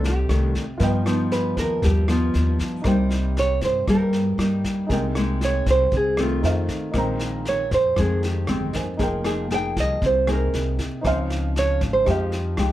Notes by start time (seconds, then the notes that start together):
Already playing: C2 C3 D#3 A3 D4 D#4 A4 D5 G5
0.04 G4, snare
0.29 C2 D#3 A3 D4, cross-stick, snare
0.55 kick, snare
0.78 G2 F3 B3 D#4 F4 B4, kick, snare
0.82 D#5 G5
1.06 F3 B3 D#4, cross-stick, snare
1.31 B4, snare
1.57 D#2 A#4, kick, snare
1.82 D#2 G2 G4, kick, snare
2.08 F3 B3 D#4 F4, cross-stick, snare
2.34 D#2, snare
2.59 kick, snare
2.82 C2 C3 D#4 A#4 C5, kick, cross-stick, snare
2.86 G3 A#3 D#4 G5
3.10 snare
3.37 C#5, snare
3.61 G2 C5, kick, snare
3.87 G2 G3 A#3 D#4 A#4, kick, cross-stick, snare
4.13 snare
4.38 G2 G3 A#3 D#4, cross-stick, snare
4.64 kick, snare
4.87 C2 C3 G#3 D#4 G#4, kick, snare
4.91 A#3 D#4 A#4 G5
5.15 G#3 A#3 D#4, cross-stick, snare
5.41 C#5, snare
5.66 C2, kick, snare
5.70 C5
5.92 C2 C3, kick, snare
5.97 G#4
6.17 D#3 A3 C4, cross-stick, snare
6.23 F4
6.43 F2 D#4 A4 C5 F5, snare
6.69 kick, snare
6.92 A#1 A#2 D#3 G#3 D#4 A#4 C5, kick, cross-stick, snare
6.96 C4 A#5
7.19 snare
7.45 C#5, snare
7.71 F2 C5, kick, snare
7.96 F2 D#3 G#3 C4 G#4, kick, cross-stick, snare
8.23 G4, snare
8.47 G1 D#3 G#3 C4, cross-stick, snare
8.73 D#4 A#4 C5 G#5, kick, snare
8.97 F1 F3 A#3 D#4 G#4, kick, snare
9.01 A#4 G5
9.24 A#3 D#4 G#4, cross-stick, snare
9.51 A#3 D#4 G#4 G5, snare
9.76 C2 D#5, kick, snare
10.02 C2 C3, kick, snare
10.06 C5
10.27 A#3 D#4 G#4, cross-stick, snare
10.33 A#4
10.54 C2, snare
10.79 kick, snare
11.01 C#2 C#3 F3 C4 D#4 C5, kick, cross-stick, snare
11.05 C#4 D#4 F5
11.30 snare
11.56 C#5, snare
11.81 G#1, kick, snare
11.93 C5
12.04 F2 F3 G#3 D#4 G4, kick, cross-stick, snare
12.10 G4 F5
12.32 snare
12.57 C2 G#3 D#4 G4, cross-stick, snare